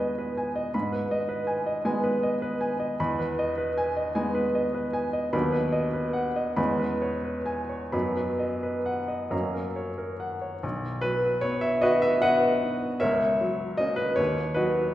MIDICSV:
0, 0, Header, 1, 2, 480
1, 0, Start_track
1, 0, Key_signature, 5, "major"
1, 0, Tempo, 747198
1, 476, Time_signature, 6, 3, 24, 8
1, 1918, Tempo, 783290
1, 3358, Tempo, 811908
1, 3838, Tempo, 865801
1, 4318, Tempo, 927357
1, 5278, Tempo, 884956
1, 6238, Tempo, 804290
1, 7198, Tempo, 775194
1, 8867, End_track
2, 0, Start_track
2, 0, Title_t, "Grand piano"
2, 0, Program_c, 0, 0
2, 0, Control_c, 0, 64, 127
2, 0, Note_on_c, 0, 40, 52
2, 0, Note_on_c, 0, 56, 46
2, 0, Note_on_c, 0, 59, 43
2, 0, Note_on_c, 0, 63, 50
2, 0, Note_on_c, 0, 71, 52
2, 0, Note_on_c, 0, 75, 48
2, 0, Note_on_c, 0, 80, 53
2, 0, Note_on_c, 0, 83, 51
2, 69, Note_off_c, 0, 71, 0
2, 118, Note_on_c, 0, 71, 49
2, 191, Note_off_c, 0, 75, 0
2, 240, Note_off_c, 0, 80, 0
2, 240, Note_on_c, 0, 80, 52
2, 310, Note_off_c, 0, 71, 0
2, 357, Note_on_c, 0, 75, 52
2, 429, Note_off_c, 0, 80, 0
2, 445, Note_off_c, 0, 56, 0
2, 446, Note_off_c, 0, 59, 0
2, 447, Note_off_c, 0, 63, 0
2, 475, Note_off_c, 0, 75, 0
2, 477, Note_off_c, 0, 83, 0
2, 477, Note_on_c, 0, 83, 55
2, 479, Note_on_c, 0, 44, 57
2, 487, Control_c, 0, 64, 0
2, 488, Note_off_c, 0, 40, 0
2, 587, Control_c, 0, 64, 127
2, 593, Note_on_c, 0, 71, 48
2, 664, Note_off_c, 0, 83, 0
2, 714, Note_on_c, 0, 75, 63
2, 782, Note_off_c, 0, 71, 0
2, 826, Note_on_c, 0, 71, 51
2, 903, Note_off_c, 0, 75, 0
2, 944, Note_on_c, 0, 80, 53
2, 1020, Note_off_c, 0, 71, 0
2, 1069, Note_on_c, 0, 75, 52
2, 1139, Note_off_c, 0, 80, 0
2, 1171, Note_off_c, 0, 44, 0
2, 1188, Note_on_c, 0, 56, 50
2, 1189, Note_on_c, 0, 80, 55
2, 1192, Note_on_c, 0, 59, 51
2, 1193, Note_on_c, 0, 63, 55
2, 1261, Note_off_c, 0, 75, 0
2, 1308, Note_on_c, 0, 71, 54
2, 1381, Note_off_c, 0, 80, 0
2, 1433, Note_on_c, 0, 75, 56
2, 1500, Note_off_c, 0, 71, 0
2, 1554, Note_on_c, 0, 71, 54
2, 1624, Note_off_c, 0, 75, 0
2, 1675, Note_on_c, 0, 80, 53
2, 1747, Note_off_c, 0, 71, 0
2, 1796, Note_on_c, 0, 75, 54
2, 1870, Note_off_c, 0, 80, 0
2, 1891, Note_off_c, 0, 56, 0
2, 1893, Note_off_c, 0, 59, 0
2, 1894, Note_off_c, 0, 63, 0
2, 1920, Note_off_c, 0, 75, 0
2, 1926, Note_on_c, 0, 40, 63
2, 1926, Note_on_c, 0, 83, 62
2, 1928, Control_c, 0, 64, 0
2, 2039, Control_c, 0, 64, 127
2, 2043, Note_on_c, 0, 71, 51
2, 2114, Note_off_c, 0, 83, 0
2, 2165, Note_on_c, 0, 75, 64
2, 2231, Note_off_c, 0, 71, 0
2, 2280, Note_on_c, 0, 71, 55
2, 2351, Note_off_c, 0, 75, 0
2, 2402, Note_on_c, 0, 80, 63
2, 2467, Note_off_c, 0, 71, 0
2, 2519, Note_on_c, 0, 75, 56
2, 2587, Note_off_c, 0, 80, 0
2, 2613, Note_off_c, 0, 40, 0
2, 2632, Note_on_c, 0, 80, 57
2, 2634, Note_on_c, 0, 56, 49
2, 2637, Note_on_c, 0, 63, 57
2, 2638, Note_on_c, 0, 59, 53
2, 2704, Note_off_c, 0, 75, 0
2, 2753, Note_on_c, 0, 71, 56
2, 2821, Note_off_c, 0, 80, 0
2, 2876, Note_on_c, 0, 75, 58
2, 2943, Note_off_c, 0, 71, 0
2, 2995, Note_on_c, 0, 71, 51
2, 3066, Note_off_c, 0, 75, 0
2, 3112, Note_on_c, 0, 80, 58
2, 3189, Note_off_c, 0, 71, 0
2, 3233, Note_on_c, 0, 75, 59
2, 3308, Note_off_c, 0, 80, 0
2, 3335, Note_off_c, 0, 56, 0
2, 3336, Note_off_c, 0, 63, 0
2, 3337, Note_off_c, 0, 59, 0
2, 3352, Note_on_c, 0, 54, 45
2, 3354, Note_on_c, 0, 39, 70
2, 3354, Note_on_c, 0, 83, 61
2, 3356, Note_off_c, 0, 75, 0
2, 3357, Note_on_c, 0, 59, 52
2, 3360, Note_on_c, 0, 63, 51
2, 3368, Control_c, 0, 64, 0
2, 3467, Control_c, 0, 64, 127
2, 3468, Note_on_c, 0, 71, 56
2, 3546, Note_off_c, 0, 83, 0
2, 3587, Note_on_c, 0, 75, 60
2, 3663, Note_off_c, 0, 71, 0
2, 3711, Note_on_c, 0, 71, 55
2, 3785, Note_off_c, 0, 75, 0
2, 3830, Note_on_c, 0, 78, 56
2, 3906, Note_off_c, 0, 71, 0
2, 3955, Note_on_c, 0, 75, 52
2, 4022, Note_off_c, 0, 78, 0
2, 4049, Note_off_c, 0, 54, 0
2, 4051, Note_off_c, 0, 59, 0
2, 4052, Note_off_c, 0, 39, 0
2, 4053, Note_off_c, 0, 63, 0
2, 4070, Note_on_c, 0, 40, 65
2, 4070, Note_on_c, 0, 83, 63
2, 4072, Note_on_c, 0, 56, 47
2, 4074, Note_off_c, 0, 75, 0
2, 4075, Note_on_c, 0, 59, 44
2, 4077, Note_on_c, 0, 61, 44
2, 4086, Control_c, 0, 64, 0
2, 4197, Note_on_c, 0, 71, 47
2, 4202, Control_c, 0, 64, 127
2, 4266, Note_off_c, 0, 83, 0
2, 4320, Note_on_c, 0, 73, 57
2, 4389, Note_off_c, 0, 71, 0
2, 4435, Note_on_c, 0, 71, 47
2, 4506, Note_off_c, 0, 73, 0
2, 4547, Note_on_c, 0, 80, 53
2, 4624, Note_off_c, 0, 71, 0
2, 4670, Note_on_c, 0, 73, 47
2, 4742, Note_off_c, 0, 80, 0
2, 4771, Note_off_c, 0, 40, 0
2, 4772, Note_off_c, 0, 56, 0
2, 4773, Note_off_c, 0, 59, 0
2, 4774, Note_off_c, 0, 61, 0
2, 4789, Note_on_c, 0, 83, 49
2, 4790, Note_on_c, 0, 54, 43
2, 4792, Note_off_c, 0, 73, 0
2, 4792, Note_on_c, 0, 42, 60
2, 4793, Note_on_c, 0, 59, 44
2, 4796, Note_on_c, 0, 63, 40
2, 4804, Control_c, 0, 64, 0
2, 4900, Control_c, 0, 64, 127
2, 4915, Note_on_c, 0, 71, 47
2, 4986, Note_off_c, 0, 83, 0
2, 5031, Note_on_c, 0, 75, 50
2, 5110, Note_off_c, 0, 71, 0
2, 5154, Note_on_c, 0, 71, 44
2, 5227, Note_off_c, 0, 75, 0
2, 5273, Note_on_c, 0, 78, 52
2, 5350, Note_off_c, 0, 71, 0
2, 5394, Note_on_c, 0, 75, 49
2, 5472, Note_off_c, 0, 78, 0
2, 5499, Note_off_c, 0, 54, 0
2, 5500, Note_off_c, 0, 42, 0
2, 5501, Note_off_c, 0, 59, 0
2, 5502, Note_off_c, 0, 63, 0
2, 5516, Note_on_c, 0, 42, 56
2, 5516, Note_on_c, 0, 54, 38
2, 5519, Note_off_c, 0, 75, 0
2, 5519, Note_on_c, 0, 82, 50
2, 5522, Note_on_c, 0, 58, 40
2, 5525, Note_on_c, 0, 61, 42
2, 5534, Control_c, 0, 64, 0
2, 5642, Control_c, 0, 64, 127
2, 5643, Note_on_c, 0, 70, 43
2, 5714, Note_off_c, 0, 82, 0
2, 5761, Note_on_c, 0, 73, 48
2, 5836, Note_off_c, 0, 70, 0
2, 5880, Note_on_c, 0, 70, 44
2, 5956, Note_off_c, 0, 73, 0
2, 6000, Note_on_c, 0, 78, 46
2, 6076, Note_off_c, 0, 70, 0
2, 6117, Note_on_c, 0, 73, 43
2, 6190, Note_off_c, 0, 78, 0
2, 6213, Note_off_c, 0, 42, 0
2, 6213, Note_off_c, 0, 54, 0
2, 6216, Note_off_c, 0, 58, 0
2, 6217, Note_off_c, 0, 61, 0
2, 6234, Note_off_c, 0, 73, 0
2, 6235, Note_on_c, 0, 35, 59
2, 6247, Control_c, 0, 64, 0
2, 6353, Control_c, 0, 64, 127
2, 6463, Note_on_c, 0, 71, 84
2, 6476, Note_on_c, 0, 54, 52
2, 6701, Note_on_c, 0, 73, 82
2, 6711, Note_off_c, 0, 71, 0
2, 6718, Note_on_c, 0, 59, 45
2, 6820, Note_on_c, 0, 76, 81
2, 6830, Note_off_c, 0, 73, 0
2, 6861, Note_off_c, 0, 54, 0
2, 6940, Note_on_c, 0, 75, 85
2, 6948, Note_on_c, 0, 66, 74
2, 6948, Note_on_c, 0, 71, 69
2, 6949, Note_off_c, 0, 76, 0
2, 6956, Note_on_c, 0, 63, 52
2, 7062, Note_on_c, 0, 76, 89
2, 7064, Note_off_c, 0, 66, 0
2, 7064, Note_off_c, 0, 71, 0
2, 7069, Note_off_c, 0, 75, 0
2, 7101, Note_off_c, 0, 59, 0
2, 7180, Note_on_c, 0, 78, 90
2, 7186, Note_on_c, 0, 75, 67
2, 7187, Note_on_c, 0, 71, 73
2, 7189, Note_off_c, 0, 76, 0
2, 7196, Note_on_c, 0, 59, 49
2, 7343, Note_off_c, 0, 63, 0
2, 7433, Note_on_c, 0, 63, 46
2, 7584, Note_off_c, 0, 59, 0
2, 7649, Note_off_c, 0, 75, 0
2, 7650, Note_off_c, 0, 71, 0
2, 7654, Note_off_c, 0, 35, 0
2, 7663, Note_on_c, 0, 76, 82
2, 7668, Note_on_c, 0, 73, 69
2, 7669, Note_on_c, 0, 70, 63
2, 7671, Note_off_c, 0, 78, 0
2, 7676, Note_off_c, 0, 63, 0
2, 7679, Note_on_c, 0, 37, 56
2, 7689, Control_c, 0, 64, 0
2, 7781, Control_c, 0, 64, 127
2, 7917, Note_on_c, 0, 54, 53
2, 8130, Note_off_c, 0, 70, 0
2, 8130, Note_off_c, 0, 73, 0
2, 8144, Note_on_c, 0, 75, 82
2, 8152, Note_off_c, 0, 76, 0
2, 8158, Note_on_c, 0, 58, 42
2, 8160, Note_on_c, 0, 61, 46
2, 8260, Note_on_c, 0, 71, 72
2, 8273, Note_off_c, 0, 75, 0
2, 8304, Note_off_c, 0, 54, 0
2, 8376, Note_off_c, 0, 58, 0
2, 8377, Note_off_c, 0, 61, 0
2, 8380, Note_off_c, 0, 37, 0
2, 8381, Note_on_c, 0, 73, 76
2, 8391, Note_off_c, 0, 71, 0
2, 8398, Note_on_c, 0, 39, 59
2, 8413, Control_c, 0, 64, 0
2, 8498, Control_c, 0, 64, 127
2, 8621, Note_on_c, 0, 71, 72
2, 8629, Note_off_c, 0, 73, 0
2, 8629, Note_on_c, 0, 63, 55
2, 8632, Note_on_c, 0, 66, 57
2, 8639, Note_on_c, 0, 54, 49
2, 8867, Note_off_c, 0, 39, 0
2, 8867, Note_off_c, 0, 54, 0
2, 8867, Note_off_c, 0, 63, 0
2, 8867, Note_off_c, 0, 66, 0
2, 8867, Note_off_c, 0, 71, 0
2, 8867, End_track
0, 0, End_of_file